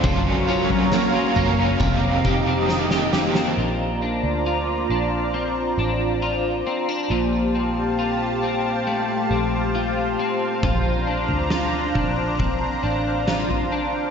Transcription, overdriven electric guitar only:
\new Staff \with { instrumentName = "Overdriven electric guitar" } { \time 4/4 \key bes \major \tempo 4 = 68 <ges bes des' f'>8 <bes des' f'>8 <ges bes des' f'>8 <bes des' f'>8 <f, c ees bes c' g'>8 <ees bes c' g'>8 <ees bes c' g'>8 <ees bes c' g'>8 | r1 | r1 | r1 | }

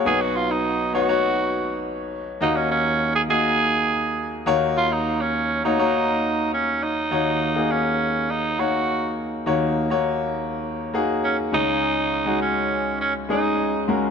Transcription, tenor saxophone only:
\new Staff \with { instrumentName = "Tenor saxophone" } { \time 4/4 \key ees \minor \tempo 4 = 102 aes'16 fis'16 f'16 dis'8. fis'4. r4 | ees'16 des'16 des'8. aes'16 aes'2 r8 | f'16 ees'8 des'8. ees'4. des'8 ees'8~ | ees'4 des'4 ees'8 ges'4 r8 |
r2. des'8 ees'8~ | ees'4 des'4 des'8 ees'4 r8 | }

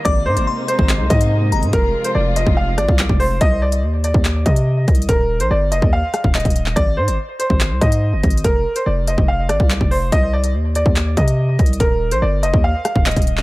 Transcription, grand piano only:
\new Staff \with { instrumentName = "Grand piano" } { \time 4/4 \key c \minor \tempo 4 = 143 d''8 c''8 r8 c''4 ees''4. | bes'8. c''16 d''8 ees''8 f''8 d''4 c''8 | ees''8 d''8 r8 d''4 ees''4. | bes'8. c''16 d''8 ees''8 f''8 f''8 ees''4 |
d''8 c''8 r8 c''4 ees''4. | bes'8. c''16 d''8 ees''8 f''8 d''4 c''8 | ees''8 d''8 r8 d''4 ees''4. | bes'8. c''16 d''8 ees''8 f''8 f''8 ees''4 | }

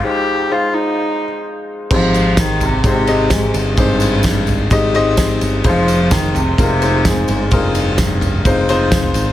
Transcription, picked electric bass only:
\new Staff \with { instrumentName = "Picked electric bass" } { \clef bass \time 4/4 \key aes \major \tempo 4 = 128 r1 | aes,,2 aes,,4. g,,8 | aes,,2 aes,,4. g,,8 | f,,2 f,,4. g,,8 |
f,,2 f,,4. aes,,8 | }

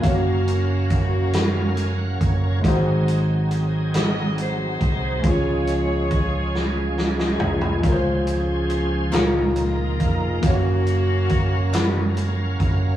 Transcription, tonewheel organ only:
\new Staff \with { instrumentName = "Tonewheel organ" } { \time 6/8 \key des \major \tempo 4. = 46 << { r2 aes''16 ges''16 des''8 | r2. | r2. | r2. |
r2. | } \\ { <ges des' bes' f''>2. | <ges bes c' ees' aes'>2. | <f aes des' aes'>2. | <f des' aes' c''>4. <f bes ees' bes'>4. |
<ges des' bes' f''>2. | } >> }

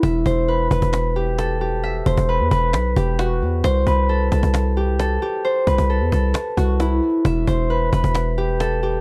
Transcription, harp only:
\new Staff \with { instrumentName = "Harp" } { \time 4/4 \key e \minor \tempo 4 = 133 e''8 c''8 b'8 b'4 g'8 a'8 g'8 | e''8 c''8 b'8 b'4 g'8 fis'4 | c''8 b'8 a'8 a'4 g'8 a'8 g'8 | c''8 b'8 a'8 a'4 fis'8 e'4 |
e''8 c''8 b'8 b'4 g'8 a'8 g'8 | }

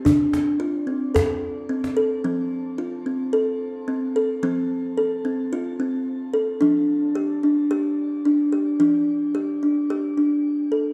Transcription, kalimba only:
<<
  \new Staff \with { instrumentName = "Kalimba" } { \time 4/4 \key f \major \tempo 4 = 110 d'4 f'8 c'8 a'4 c'8 a'8 | c'4 f'8 c'8 a'4 c'8 a'8 | c'4 a'8 c'8 f'8 c'4 a'8 | d'4 g'8 d'8 g'4 d'8 g'8 |
d'4 g'8 d'8 g'8 d'4 a'8 | }
  \new Staff \with { instrumentName = "Kalimba" } { \clef bass \time 4/4 \key f \major r1 | f1 | f1 | f1 |
f1 | }
>>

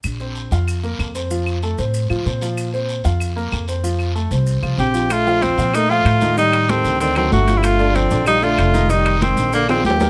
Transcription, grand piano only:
\new Staff \with { instrumentName = "Grand piano" } { \time 4/4 \key bes \major \tempo 4 = 190 r8 <c' c''>4 <f' f''>4 <bes bes'>4 <c' c''>8 | <f f'>4 <a a'>8 <c' c''>4 <f f'>8 <c' c''>8 <f f'>8~ | <f f'>8 <c' c''>4 <f' f''>4 <bes bes'>4 <c' c''>8 | <f f'>4 <a a'>8 <c' c''>4 <f f'>8 <c' c''>8 <f f'>8 |
r8 <f f' f''>4 <f f' f''>8 <a a' bes'>8 <f f' f''>4 <ees ees' ees''>8 | <ees ees' ees''>4 <g g' a'>4 <d d' d''>8 <fis fis' a'>4 <f f' g'>8~ | <f f' g'>8 <d d' d''>4 <d d' d''>8 <f f' g'>8 <d d' d''>4 <ees ees' ees''>8 | <ees ees' ees''>4 <aes aes' c''>4 <d d' d''>8 <f f' aes'>4 <g g' bes'>8 | }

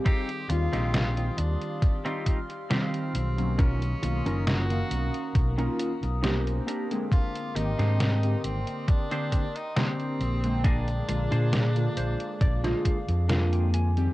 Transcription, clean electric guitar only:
\new Staff \with { instrumentName = "Clean electric guitar" } { \time 4/4 \key ees \major \tempo 4 = 68 << { r1 | r1 | r1 | r4. c''8 d''16 ees''16 f''8 f''16 g''16 aes''8 | } \\ { <c' ees' f' g'>16 r8 <c' ees' f' g'>8. r8. <c' ees' f' g'>16 r8 <c' ees' f' g'>8 r8 | <cis' dis' eis' ais'>16 r8 <cis' dis' eis' ais'>8. r8. <cis' dis' eis' ais'>16 r8 <cis' dis' eis' ais'>8 <c' d' g' bes'>8~ | <c' d' g' bes'>16 r8 <c' d' g' c''>8. r8. <c' d' g' c''>16 r8 <c' d' g' bes'>8 r8 | <d' f' aes' bes'>16 r8 <d' f' aes' c''>8. r8. <d' f' aes' c''>16 r8 <d' f' aes' bes'>8 r8 | } >> }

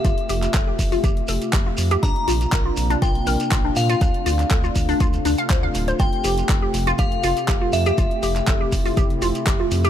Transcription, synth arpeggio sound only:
\new Staff \with { instrumentName = "Synth arpeggio sound" } { \time 4/4 \key f \major \tempo 4 = 121 f'16 r16 g'16 r16 a'16 g'16 r16 f'16 g'16 r16 a'16 r16 g'16 f'16 r16 g'16 | d'16 r16 f'16 r16 bes'16 f'16 r16 d'16 f'16 r16 bes'16 r16 f'16 d'16 r16 f'16 | d'16 r16 f'16 r16 a'16 f'16 r16 d'16 f'16 r16 d'16 f''16 c''16 f''16 r16 c''16 | f'16 r16 g'16 r16 a'16 g'16 r16 f'16 g'16 r16 f'16 r16 g'16 f'16 r16 g'16 |
f'16 r16 g'16 r16 a'16 g'16 r16 f'16 g'16 r16 f'16 r16 g'16 f'16 r16 g'16 | }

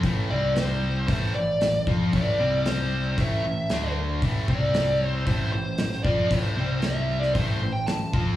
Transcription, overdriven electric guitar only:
\new Staff \with { instrumentName = "Overdriven electric guitar" } { \clef bass \time 4/4 \key a \minor \tempo 4 = 115 <a, e a>8 <c g c'>4. <a, e a>8 <a, e>8 <a, e>8 <f c' f'>8 | <a, e a>8 <c g c'>4. <a, e a>8 <a, e>8 <d a d'>4 | <a, e a>8 <c g c'>4. <a, e a>8 <a, e>8 <a, e>8 <f c' f'>8 | <a, e a>8 <c g c'>4. <a, e a>8 <a, e>8 <a, e>8 <f c' f'>8 | }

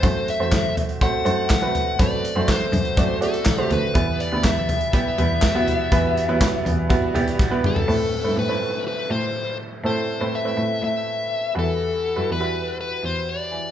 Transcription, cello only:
\new Staff \with { instrumentName = "Cello" } { \clef bass \time 4/4 \key a \dorian \tempo 4 = 122 fis,8. e,16 fis,4. fis,4. | fis,8. fis,8. fis,8 fis,4. d,8 | e,8. d,16 e,4. e,4. | e,8. e,8. e,8 e,4. g,8 |
a,8. g,16 a,4. a,4. | a,8. a,8. a,8 a,4. e,8~ | e,8. fis,16 e,4. e,4. | }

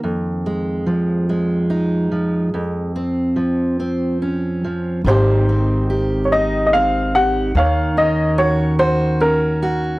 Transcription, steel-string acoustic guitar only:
\new Staff \with { instrumentName = "Steel-string acoustic guitar" } { \time 3/4 \key aes \major \tempo 4 = 72 << { r8 aes4 aes8 ees'4 | r8 c'4 c'8 des'4 | <ees c' ees' g'>8 c'8 g'8 ees'8 c'8 g'8 | r8 des'8 ges'8 ges'8 des'8 ges'8 | } \\ { <f, ees>4 f4. f8 | f,4 f4. f8 | aes,2. | ees2. | } >> }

